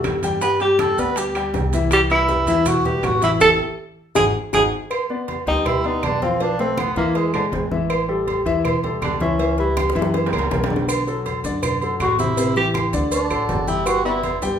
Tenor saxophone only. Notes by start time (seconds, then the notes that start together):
0.42 B4
0.61 G4
0.80 A4
1.00 B4
1.18 G4
1.93 G4
2.11 E4
2.67 F#4
2.85 G4
3.05 F#4
3.23 E4
3.41 A4
4.16 G#4
4.54 G#4
5.48 D#4
5.67 E4
5.85 D#4
6.04 D4
6.22 C4
6.42 D4
6.60 C4
6.79 B3
6.97 A#3
7.16 G#3
7.35 D3
9.03 D4
9.21 C#4
9.60 E4
12.02 F#4
12.19 E4
12.57 G4
13.13 D4
13.68 E4
13.86 F#4
14.05 E4